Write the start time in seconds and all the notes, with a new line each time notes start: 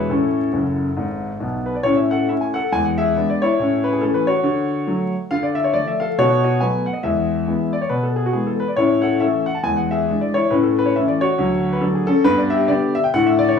Already playing: E2 G#3 D4 F#4 G#4 B4 C#5 E5
0.09 A2 C#4 E4 A4
0.53 F#1 F#2
0.97 G#1 G#2
1.40 B1 B2
1.66 B4
1.75 D5
1.83 A2 C#4 C#5
1.97 E5
2.11 A4 F#5
2.29 A3 C#4 E4 E5
2.41 G#5
2.54 A4 F#5
2.72 E2 G#3 G#5
2.85 F#5
2.98 G#4 E5
3.17 G#3 B3 D4
3.30 D5
3.42 E4 C#5
3.59 A2 C#4
3.84 B4
3.93 G#4
4.01 E3 A3 C#4 A4
4.14 B4
4.27 F#4 C#5
4.43 D3 F#4
4.87 F#3 A3
5.31 D3 F4 F5
5.43 D5
5.55 E5
5.64 C#5
5.74 F3 A3 D5
5.87 E5
6.00 A4 F5
6.18 B2 D#4 F#4 C#5
6.44 F#4 D#5
6.60 F#3 A3 B3 B4 G#5
6.86 F#5
6.93 D#5
7.03 E2 G#3 G#4 E5
7.48 E3 G#3 B3
7.73 D5
7.81 C#5
7.89 B2 B4
8.03 A4
8.16 G#4
8.26 F#4
8.33 E3 G#3 B3 G#4
8.47 A4
8.60 B4
8.68 D5
8.76 A2 C#4 E4 C#5
9.02 A4 F#5
9.20 E3 A3 C#4 A4 E5
9.46 F#5
9.55 A5
9.64 E2 G#3 G#5
9.77 F#5
9.91 G#4 E5
10.10 E3 G#3 D4
10.21 D5
10.34 E4 C#5
10.50 A2 C#4 B4
10.63 A4
10.79 B4
10.86 C#5
10.96 E3 A3 C#4 E5
11.08 D5
11.21 F#4 C#5
11.38 D2 F#3
11.73 B4
11.81 F#3 A3 D4 A4
11.95 G#4
12.07 C#4 A4
12.24 G2 B3 B4
12.38 D5
12.50 G4 E5
12.68 D3 B3 D4 G4 D5
12.95 E5
13.04 G5
13.14 A2 D3 A3 D4 F#5
13.26 E5
13.39 D5
13.49 C#5